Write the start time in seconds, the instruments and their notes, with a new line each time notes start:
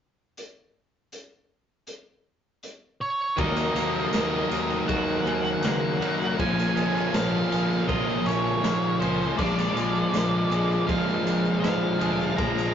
0.37 closed hi-hat
1.12 closed hi-hat
1.87 closed hi-hat
2.63 closed hi-hat
3.01 lead electric guitar C#5
3.37 fingered electric bass D#2, overdriven electric guitar D#3 A#3 D#4 F#4, distorted electric guitar F#3, lead electric guitar D#5, kick, ride, tambourine
3.57 tambourine
3.75 fingered electric bass D#2, overdriven electric guitar A#3 D#4 F#4, ride, tambourine
3.95 tambourine
4.13 fingered electric bass D#2, overdriven electric guitar D#3 A#3 D#4 F#4, snare, ride, tambourine
4.50 fingered electric bass D#2, overdriven electric guitar A#3 D#4 F#4, ride, tambourine
4.70 tambourine
4.87 fingered electric bass D#2, overdriven electric guitar D#3 A#3 D#4 F#4, lead electric guitar F#5, kick, ride, tambourine
5.08 tambourine
5.24 fingered electric bass D#2, overdriven electric guitar A#3 D#4 F#4, clean electric guitar C#4, ride
5.45 tambourine
5.62 fingered electric bass C#3, overdriven electric guitar D#3 A#3 D#4 F#4, lead electric guitar F#5, snare, ride, tambourine
6.00 fingered electric bass F#2, overdriven electric guitar A#3 D#4 F#4, ride, tambourine
6.04 distorted electric guitar D#3 F#3
6.21 tambourine
6.37 fingered electric bass A#1, overdriven electric guitar A#2 F3 A#3 C#4 F4, lead electric guitar G#5, kick, ride, tambourine
6.59 tambourine
6.75 fingered electric bass A#1, clean electric guitar G#3, overdriven electric guitar A#3 C#4 F4, ride, tambourine
6.96 tambourine
7.13 fingered electric bass A#1, overdriven electric guitar F3 A#3 C#4 F4, lead electric guitar F5, snare, ride, tambourine
7.50 fingered electric bass A#1, clean electric guitar G#3, overdriven electric guitar A#3 C#4 F4, ride, tambourine
7.72 tambourine
7.86 fingered electric bass A#1, overdriven electric guitar A#2 F3 A#3 C#4 F4, lead electric guitar D#5, kick, ride, tambourine
8.10 tambourine
8.24 fingered electric bass A#1, overdriven electric guitar A#3 C#4 F4, lead electric guitar C#5, ride
8.28 tambourine
8.47 tambourine
8.62 fingered electric bass G#2, overdriven electric guitar F3 A#3 C#4 F4, snare, ride, tambourine
8.99 fingered electric bass C#2, distorted electric guitar A#2 F3, clean electric guitar G#3, overdriven electric guitar A#3 C#4 F4, lead electric guitar C5, ride, tambourine
9.22 tambourine
9.37 fingered electric bass A#1, overdriven electric guitar A#2 F3 G#3 D4 F4, distorted electric guitar A#3, lead electric guitar D5, kick, crash, tambourine
9.59 tambourine
9.74 fingered electric bass A#1, overdriven electric guitar G#3 D4 F4, ride, tambourine
9.95 tambourine
10.11 fingered electric bass A#1, overdriven electric guitar F3 G#3 D4 F4, snare, ride, tambourine
10.50 fingered electric bass A#1, overdriven electric guitar G#3 D4 F4, ride, tambourine
10.72 tambourine
10.86 fingered electric bass A#1, overdriven electric guitar A#2 F3 G#3 D4 F4, lead electric guitar F5, kick, ride
10.90 tambourine
11.09 tambourine
11.25 fingered electric bass A#1, overdriven electric guitar G#3 D4 F4, ride, tambourine
11.45 tambourine
11.60 fingered electric bass G#2, overdriven electric guitar F3 G#3 D4, lead electric guitar F5, snare, ride
11.64 overdriven electric guitar F4, tambourine
11.99 fingered electric bass D2, distorted electric guitar A#2 F3 A#3, overdriven electric guitar G#3 D4 F4, ride, tambourine
12.21 tambourine
12.37 fingered electric bass A#1, overdriven electric guitar A#2 F3 G#3 D4 F4, distorted electric guitar A#3, lead electric guitar A#5, kick, ride, tambourine
12.58 tambourine